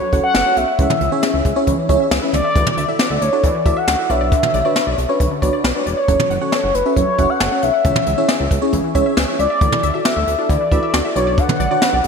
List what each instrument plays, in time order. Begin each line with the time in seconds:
Already playing: soft synth lead C#5
0.02 synth pluck F#3
0.13 analog synth bass F#1, fm electric piano C#4 F#4 A4 C#5, synth pluck F#5, kick, closed hi-hat
0.24 soft synth lead F#5, synth pluck F#5
0.34 analog synth bass F#1, synth pluck A4, snare, closed hi-hat
0.46 fm electric piano C#4 F#4 A4 C#5, synth pluck F#5
0.57 analog synth bass B1, soft synth lead E5, synth pluck F#5, closed hi-hat
0.68 synth pluck F#5
0.79 analog synth bass C#2, synth pluck E3, fm electric piano C#4 E4 G#4 C#5, kick, closed hi-hat
0.90 synth pluck E3, mid tom
1.01 analog synth bass C#2, synth pluck E5, closed hi-hat
1.12 fm electric piano C#4 E4 G#4 C#5, synth pluck E5
1.23 synth pluck G#4, snare, closed hi-hat
1.34 analog synth bass C#2, synth pluck E5
1.45 analog synth bass C#2, kick, closed hi-hat
1.56 synth pluck C#4, fm electric piano C#4 E4 G#4 C#5
1.67 analog synth bass C#2, synth pluck E3, kick, closed hi-hat
1.78 synth pluck E3
1.89 analog synth bass C#2, fm electric piano C#4 E4 G#4 C#5, synth pluck E5, kick, closed hi-hat
2.00 synth pluck E5
2.11 analog synth bass C#2, synth pluck G#4, snare, closed hi-hat
2.22 fm electric piano C#4 E4 G#4 B4, synth pluck E5
2.33 analog synth bass C#2, soft synth lead D5, synth pluck E5, closed hi-hat, mid tom
2.44 synth pluck E5
2.55 analog synth bass D2, synth pluck E3, fm electric piano E4 F#4 A4 D5, kick, closed hi-hat
2.67 synth pluck E3, mid tom
2.77 analog synth bass D2, synth pluck E5, closed hi-hat
2.88 fm electric piano E4 F#4 A4 D5, soft synth lead D5, synth pluck E5
2.99 synth pluck F#4, snare, closed hi-hat
3.10 analog synth bass D2, synth pluck E5
3.22 analog synth bass D2, soft synth lead C#5, closed hi-hat
3.33 synth pluck D4, fm electric piano E4 F#4 A4 C#5
3.44 analog synth bass D2, synth pluck E3, soft synth lead D5, kick, closed hi-hat
3.55 synth pluck E3
3.66 analog synth bass D2, fm electric piano E4 F#4 A4 E5, synth pluck E5, kick, closed hi-hat
3.77 synth pluck E5, soft synth lead F#5
3.88 analog synth bass D2, synth pluck F#4, snare, closed hi-hat
3.99 fm electric piano E4 F#4 A4 D5, synth pluck E5
4.10 analog synth bass B1, fm electric piano D4 F#4 B4 C#5, synth pluck D5, soft synth lead E5, closed hi-hat
4.21 synth pluck D5
4.32 synth pluck D3, kick, closed hi-hat
4.43 synth pluck D3, mid tom
4.54 analog synth bass B1, synth pluck D5, closed hi-hat
4.65 fm electric piano D4 F#4 B4 C#5, synth pluck D5
4.76 synth pluck B4, snare, closed hi-hat
4.87 analog synth bass B1, synth pluck D5
4.98 analog synth bass B1, closed hi-hat
5.09 synth pluck C#4, fm electric piano D4 F#4 B4 C#5
5.20 analog synth bass B1, synth pluck D3, kick, closed hi-hat
5.31 synth pluck D3
5.42 analog synth bass B1, fm electric piano D4 F#4 B4 C#5, synth pluck D5, kick, closed hi-hat
5.53 synth pluck D5
5.64 analog synth bass B1, synth pluck B4, snare, closed hi-hat
5.75 fm electric piano D4 F#4 B4 C#5, synth pluck D5
5.86 analog synth bass E1, soft synth lead C#5, synth pluck D5, closed hi-hat
5.97 synth pluck D5
6.08 analog synth bass F#1, synth pluck F#3, fm electric piano C#4 F#4 A4 C#5, kick, closed hi-hat
6.19 synth pluck F#3, mid tom
6.30 analog synth bass F#1, synth pluck F#5, closed hi-hat
6.41 fm electric piano C#4 F#4 A4 C#5, soft synth lead C#5, synth pluck F#5
6.52 synth pluck A4, snare, closed hi-hat
6.64 analog synth bass F#1, synth pluck F#5
6.74 analog synth bass F#1, soft synth lead B4, closed hi-hat
6.86 synth pluck C#4, fm electric piano C#4 F#4 A4 E5
6.96 analog synth bass F#1, synth pluck F#3, soft synth lead C#5, kick, closed hi-hat
7.07 synth pluck F#3
7.19 analog synth bass F#1, fm electric piano C#4 F#4 A4 E5, synth pluck F#5, kick, closed hi-hat
7.29 soft synth lead F#5, synth pluck F#5
7.40 analog synth bass F#1, synth pluck A4, snare, closed hi-hat
7.52 fm electric piano C#4 F#4 A4 C#5, synth pluck F#5
7.63 analog synth bass B1, soft synth lead E5, synth pluck F#5, closed hi-hat
7.74 synth pluck F#5
7.85 analog synth bass C#2, synth pluck E3, fm electric piano C#4 E4 G#4 C#5, kick, closed hi-hat
7.96 synth pluck E3, mid tom
8.06 analog synth bass C#2, synth pluck E5, closed hi-hat
8.18 fm electric piano C#4 E4 G#4 C#5, synth pluck E5
8.29 synth pluck G#4, snare, closed hi-hat
8.40 analog synth bass C#2, synth pluck E5
8.51 analog synth bass C#2, kick, closed hi-hat
8.62 fm electric piano C#4 E4 G#4 C#5, synth pluck C#4
8.73 analog synth bass C#2, synth pluck E3, kick, closed hi-hat
8.84 synth pluck E3
8.95 analog synth bass C#2, fm electric piano C#4 E4 G#4 C#5, synth pluck E5, kick, closed hi-hat
9.06 synth pluck E5
9.17 analog synth bass C#2, synth pluck G#4, snare, closed hi-hat
9.28 fm electric piano C#4 E4 G#4 C#5, synth pluck E5
9.39 analog synth bass C#2, soft synth lead D5, synth pluck E5, closed hi-hat
9.50 synth pluck E5
9.61 analog synth bass D2, synth pluck E3, fm electric piano E4 F#4 A4 D5, kick, closed hi-hat
9.72 synth pluck E3, mid tom
9.83 analog synth bass D2, synth pluck E5, closed hi-hat
9.94 fm electric piano E4 F#4 A4 D5, soft synth lead D5, synth pluck E5
10.05 synth pluck F#4, soft synth lead E5, snare, closed hi-hat
10.16 analog synth bass D2, synth pluck E5
10.27 analog synth bass D2, closed hi-hat
10.38 synth pluck D4, fm electric piano E4 F#4 A4 D5
10.49 analog synth bass D2, synth pluck E3, soft synth lead D5, kick, closed hi-hat
10.61 synth pluck E3
10.72 analog synth bass D2, fm electric piano E4 F#4 A4 B4, synth pluck E5, kick, closed hi-hat
10.83 synth pluck E5
10.94 analog synth bass D2, synth pluck F#4, snare, closed hi-hat
11.05 fm electric piano E4 F#4 A4 D5, synth pluck E5
11.16 analog synth bass B1, fm electric piano D4 F#4 B4 C#5, soft synth lead C#5, synth pluck D5, closed hi-hat
11.27 synth pluck D5
11.38 synth pluck D3, soft synth lead F#5, kick, closed hi-hat
11.49 synth pluck D3, mid tom
11.60 analog synth bass B1, synth pluck D5, closed hi-hat
11.71 fm electric piano D4 F#4 B4 C#5, synth pluck D5
11.82 synth pluck B4, snare, closed hi-hat
11.93 analog synth bass B1, synth pluck D5
12.04 analog synth bass B1, closed hi-hat